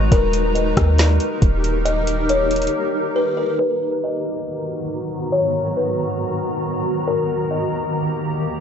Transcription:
Already playing: 808-style bass G#1
0.12 808-style bass D#1, ambient pad D#4 G4 A#4, kalimba A#4, kick, closed hi-hat
0.33 closed hi-hat
0.55 kalimba D#5, closed hi-hat
0.77 808-style bass D#2, kick, cross-stick, closed hi-hat
0.98 snare, closed hi-hat
1.20 closed hi-hat
1.42 808-style bass D#1, kick, closed hi-hat
1.64 closed hi-hat
1.85 kalimba D#5, closed hi-hat
2.07 closed hi-hat
2.29 kalimba C#5, closed hi-hat
2.51 closed hi-hat
2.56 closed hi-hat
2.62 closed hi-hat
2.67 closed hi-hat
3.16 kalimba B4
3.37 kalimba A#4
3.59 ambient pad G#2 D#3 B3 F#4 A#5, kalimba B4
4.04 kalimba D#5
5.32 kalimba C#5
5.77 kalimba B4
7.07 ambient pad D#2 A#3 G4, kalimba A#4
7.51 kalimba D#5

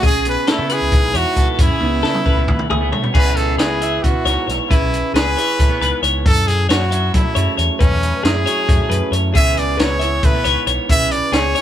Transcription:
0.03 picked electric bass C#2, clean electric guitar C#3 G#4, trumpet G#4, kick, closed hi-hat
0.15 picked electric bass B1
0.25 clean electric guitar B3, closed hi-hat
0.29 trumpet B4
0.47 clean electric guitar A3 A4, trumpet E4, snare, closed hi-hat
0.59 picked electric bass C#3, clean electric guitar B3
0.69 clean electric guitar E4 B4, trumpet G#4, closed hi-hat
0.81 picked electric bass C#2
0.92 picked electric bass C#2, clean electric guitar G#2, kick, closed hi-hat
1.03 picked electric bass B1
1.14 picked electric bass E2, clean electric guitar E4 C#5, trumpet F#4, closed hi-hat
1.36 picked electric bass C#2, clean electric guitar B3 A4, kick, closed hi-hat
1.51 trumpet F#4
1.59 picked electric bass F#2, clean electric guitar C#3 G#4, trumpet E4, kick, closed hi-hat
1.80 picked electric bass C#2, clean electric guitar B3, high tom
2.03 picked electric bass C#3, clean electric guitar B3 A4, snare
2.14 mid tom
2.26 clean electric guitar A3 B4, kick
2.37 picked electric bass C#2, clean electric guitar B3
2.47 clean electric guitar G#2, kick, mid tom
2.59 mid tom
2.70 picked electric bass C#2, clean electric guitar A3 G#4, mid tom
2.81 clean electric guitar B3
2.92 clean electric guitar A3 C#5, floor tom
3.02 clean electric guitar B3, floor tom
3.14 picked electric bass C#2, clean electric guitar C#3 E3 B3 E4 G#4, trumpet B4, kick, crash
3.36 picked electric bass C#2, trumpet A4, closed hi-hat
3.58 picked electric bass C#2, clean electric guitar E4 B4, trumpet G#4, snare, closed hi-hat
3.81 clean electric guitar E3 E5, closed hi-hat
4.03 picked electric bass C#3, clean electric guitar B3, trumpet F#4, kick, closed hi-hat
4.25 picked electric bass C#2, clean electric guitar G#2 C#5, snare, closed hi-hat
4.48 picked electric bass B1, clean electric guitar C#5, snare, closed hi-hat
4.69 picked electric bass B1, clean electric guitar C#3 B4, trumpet E4, kick, closed hi-hat
4.81 picked electric bass B1
4.94 closed hi-hat
5.14 picked electric bass C#2, clean electric guitar G#4, trumpet B4, snare, closed hi-hat
5.37 clean electric guitar E3 C#5, closed hi-hat
5.59 picked electric bass C#2, clean electric guitar A3, kick, closed hi-hat
5.69 clean electric guitar B3
5.80 picked electric bass C#2, clean electric guitar G#2 B4, closed hi-hat
6.03 picked electric bass C#2, clean electric guitar C#5, closed hi-hat
6.26 clean electric guitar F#2 A4, picked electric bass F#2, trumpet A4, kick, closed hi-hat
6.47 picked electric bass F#2, trumpet G#4, closed hi-hat
6.69 picked electric bass F#2, clean electric guitar C#4 C#5, trumpet F#4, snare, closed hi-hat
6.80 clean electric guitar E4
6.91 clean electric guitar F#3 E5, closed hi-hat
7.14 picked electric bass F#3, clean electric guitar A3, trumpet E4, kick, snare, closed hi-hat
7.35 picked electric bass F#2, clean electric guitar C#3 C#5, closed hi-hat
7.57 picked electric bass E2, clean electric guitar C#5, closed hi-hat
7.79 picked electric bass E2, clean electric guitar F#2 B4, trumpet C#4, kick, closed hi-hat
7.91 picked electric bass E2
8.03 closed hi-hat
8.23 picked electric bass F#2, clean electric guitar E4 G#4, trumpet G#4, snare, closed hi-hat
8.46 clean electric guitar F#3 C#5, closed hi-hat
8.69 picked electric bass F#2, clean electric guitar A3, kick, closed hi-hat
8.90 picked electric bass F#2, clean electric guitar C#3 B4, closed hi-hat
9.11 picked electric bass F#2, clean electric guitar C#5, closed hi-hat
9.34 picked electric bass C#2, clean electric guitar C#3 E3 B3 E4 G#4, trumpet E5, kick, closed hi-hat
9.57 picked electric bass C#2, trumpet D5, closed hi-hat
9.78 picked electric bass C#2, clean electric guitar F#4 B4, trumpet C#5, snare, closed hi-hat
9.90 clean electric guitar G#4
9.99 clean electric guitar E3 E5, closed hi-hat
10.23 picked electric bass C#3, clean electric guitar A3, trumpet B4, kick, closed hi-hat
10.35 clean electric guitar B3
10.45 picked electric bass C#2, clean electric guitar G#2 C#5, closed hi-hat
10.67 picked electric bass B1, clean electric guitar C#5, closed hi-hat
10.89 picked electric bass B1, clean electric guitar C#3 B4, trumpet E5, kick, closed hi-hat
11.00 picked electric bass B1
11.11 trumpet D5, closed hi-hat
11.32 picked electric bass C#2, clean electric guitar G#4, trumpet C#5, snare, closed hi-hat
11.55 clean electric guitar E3 C#5, snare, closed hi-hat

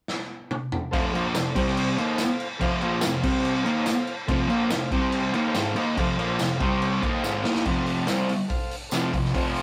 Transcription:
0.08 snare
0.51 mid tom
0.72 floor tom
0.91 distorted electric guitar F2 C3 F3, transistor combo organ A4 C5 F5, kick, crash
1.11 distorted electric guitar A#2 F3 A#3, transistor combo organ A4 C5 F5, crash
1.33 distorted electric guitar F2 C3, transistor combo organ A4 C5 D5, snare, tambourine, crash
1.55 distorted electric guitar C3 G3 C4, transistor combo organ G4 C5 G5, kick, crash
1.66 snare
1.77 crash
1.98 distorted electric guitar D#3 A#3 D#4, transistor combo organ A4 C5 F5, crash
2.18 snare, tambourine, crash
2.40 crash
2.58 distorted electric guitar F2 C3 F3, transistor combo organ A4 C5 F5, kick, crash
2.81 distorted electric guitar A#2 F3 A#3, transistor combo organ A4 C5 F5, crash
3.01 distorted electric guitar F2 C3, transistor combo organ A4 C5 F5, snare, tambourine, crash
3.21 distorted electric guitar C3 G3 C4, transistor combo organ G4 C5 G5, kick, crash
3.45 crash
3.63 distorted electric guitar D#3 A#3 D#4, transistor combo organ A4 C5 F5, crash
3.86 snare, tambourine, crash
4.07 crash
4.27 distorted electric guitar F2 C3 F3, transistor combo organ A4 C5 F5, kick, crash
4.48 distorted electric guitar A#2 F3 A#3, transistor combo organ A4 C5 F5, crash
4.69 distorted electric guitar F2 C3, transistor combo organ A4 C5 F5, snare, tambourine, crash
4.91 distorted electric guitar C3 G3 C4, transistor combo organ G4 C5 G5, kick, crash
5.12 crash
5.34 distorted electric guitar D#3 A#3 D#4, transistor combo organ A4 C5 F5, crash
5.55 distorted electric guitar G#2 D#3 G#3, snare, tambourine, crash
5.75 distorted electric guitar D#3 A#3 D#4, crash
5.97 distorted electric guitar F2 C3 F3, transistor combo organ A4 C5 F5, kick, crash
6.17 distorted electric guitar A#2 F3 A#3, transistor combo organ A4 C5 F5, crash
6.37 distorted electric guitar F2 C3, transistor combo organ A4 C5 F5, snare, tambourine, crash
6.58 distorted electric guitar C3 G3, transistor combo organ G4 C5 G5, kick, crash
6.62 distorted electric guitar C4
6.82 crash
7.01 distorted electric guitar D#3 A#3 D#4, transistor combo organ A4 C5 F5, kick, crash
7.23 distorted electric guitar G#2 D#3 G#3, snare, tambourine
7.44 distorted electric guitar D#3 A#3 D#4, snare
7.55 snare
7.65 distorted electric guitar F2 C3 F3, transistor combo organ A4 C5 F5, kick, crash
7.86 open hi-hat
8.06 distorted electric guitar C3 G3 C4, transistor combo organ A4 C5 F5, snare, open hi-hat, tambourine
8.29 open hi-hat
8.48 transistor combo organ A4 C5 F5, kick, open hi-hat
8.71 open hi-hat
8.89 distorted electric guitar F2 C3, transistor combo organ A4 C5 F5, snare, open hi-hat, tambourine
8.94 distorted electric guitar F3
9.13 distorted electric guitar F2 C3, kick, open hi-hat
9.25 snare
9.34 distorted electric guitar F2 C3 F3, transistor combo organ A4 C5 F5, kick, open hi-hat
9.55 open hi-hat

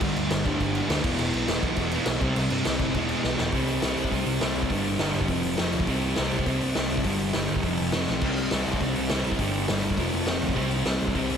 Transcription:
0.01 picked electric bass G1, distorted electric guitar G2 D3 G3, kick, crash
0.16 picked electric bass D2, crash
0.30 picked electric bass G1, snare, crash
0.45 picked electric bass D2, distorted electric guitar G2 D3 G3, kick, crash
0.60 picked electric bass G1, kick, crash
0.75 crash
0.89 picked electric bass D2, distorted electric guitar G2 D3 G3, snare, crash
1.03 picked electric bass E1, distorted electric guitar E2 B2 E3, kick, crash
1.19 picked electric bass E1, crash
1.33 picked electric bass B1, crash
1.47 picked electric bass E1, distorted electric guitar E2 B2 E3, snare, crash
1.63 picked electric bass B1, kick, crash
1.76 picked electric bass E1, kick, crash
1.91 distorted electric guitar E2 B2 E3, crash
2.06 picked electric bass B1, snare, crash
2.21 picked electric bass C2, distorted electric guitar C3 G3 C4, kick, crash
2.36 picked electric bass C2, crash
2.50 picked electric bass G2, crash
2.65 picked electric bass C2, distorted electric guitar C3 G3 C4, snare, crash
2.79 picked electric bass G1, kick, crash
2.94 picked electric bass E1, distorted electric guitar E2 B2 E3, kick, crash
3.09 crash
3.24 picked electric bass B1, snare
3.38 picked electric bass E1, distorted electric guitar E2 B2 E3, snare
3.52 picked electric bass C2, distorted electric guitar C3 G3 C4, kick, open hi-hat
3.67 open hi-hat
3.82 picked electric bass C2, distorted electric guitar C3 G3 C4, snare, open hi-hat
3.97 picked electric bass C2, open hi-hat
4.04 kick
4.11 picked electric bass C2, distorted electric guitar C3 G3 C4, kick, open hi-hat
4.26 picked electric bass C2, open hi-hat
4.41 picked electric bass C2, distorted electric guitar C3 G3 C4, snare, open hi-hat
4.55 picked electric bass C2, open hi-hat
4.63 kick
4.70 picked electric bass G1, distorted electric guitar G2 D3 G3, kick, open hi-hat
4.84 open hi-hat
4.99 picked electric bass G1, distorted electric guitar G2 D3 G3, snare, open hi-hat
5.13 picked electric bass G1, open hi-hat
5.21 kick
5.28 picked electric bass F1, distorted electric guitar F2 C3 F3, kick, open hi-hat
5.43 picked electric bass F1, open hi-hat
5.57 picked electric bass F1, distorted electric guitar F2 C3 F3, snare, open hi-hat
5.72 picked electric bass D2, open hi-hat
5.80 kick
5.87 picked electric bass C2, distorted electric guitar C3 G3 C4, kick, open hi-hat
6.02 open hi-hat
6.16 picked electric bass C2, distorted electric guitar C3 G3 C4, snare, open hi-hat
6.31 picked electric bass C2, open hi-hat
6.39 kick
6.46 picked electric bass C2, distorted electric guitar C3 G3 C4, kick, open hi-hat
6.61 picked electric bass C2, open hi-hat
6.75 picked electric bass C2, distorted electric guitar C3 G3 C4, snare, open hi-hat
6.90 picked electric bass C2, open hi-hat
6.97 kick
7.04 picked electric bass G1, distorted electric guitar G2 D3 G3, kick, open hi-hat
7.19 open hi-hat
7.33 picked electric bass G1, distorted electric guitar G2 D3 G3, snare, open hi-hat
7.48 picked electric bass G1, open hi-hat
7.56 kick
7.63 picked electric bass F1, distorted electric guitar F2 C3 F3, kick, open hi-hat
7.77 picked electric bass F1, open hi-hat
7.92 picked electric bass F1, distorted electric guitar F2 C3 F3, snare, open hi-hat
8.07 picked electric bass B1, snare
8.21 picked electric bass C2, distorted electric guitar C3 G3 C4, kick, crash
8.37 open hi-hat
8.51 picked electric bass C2, distorted electric guitar C3 G3 C4, snare, open hi-hat
8.66 picked electric bass C2, open hi-hat
8.73 kick
8.80 picked electric bass C2, distorted electric guitar C3 G3 C4, kick, open hi-hat
8.95 picked electric bass C2, open hi-hat
9.09 picked electric bass C2, distorted electric guitar C3 G3 C4, snare, open hi-hat
9.24 picked electric bass C2, open hi-hat
9.32 kick
9.39 picked electric bass G1, distorted electric guitar G2 D3 G3, kick, open hi-hat
9.54 open hi-hat
9.68 picked electric bass G1, distorted electric guitar G2 D3 G3, snare, open hi-hat
9.83 picked electric bass G1, open hi-hat
9.90 kick
9.97 picked electric bass F1, distorted electric guitar F2 C3 F3, kick, open hi-hat
10.12 picked electric bass F1, open hi-hat
10.26 picked electric bass F1, distorted electric guitar F2 C3 F3, snare, open hi-hat
10.42 picked electric bass D2, open hi-hat
10.49 kick
10.55 picked electric bass C2, distorted electric guitar C3 G3 C4, kick, open hi-hat
10.71 open hi-hat
10.85 picked electric bass C2, distorted electric guitar C3 G3 C4, snare, open hi-hat
11.00 picked electric bass C2, open hi-hat
11.08 kick
11.15 picked electric bass C2, distorted electric guitar C3 G3 C4, kick, open hi-hat
11.30 picked electric bass C2, open hi-hat

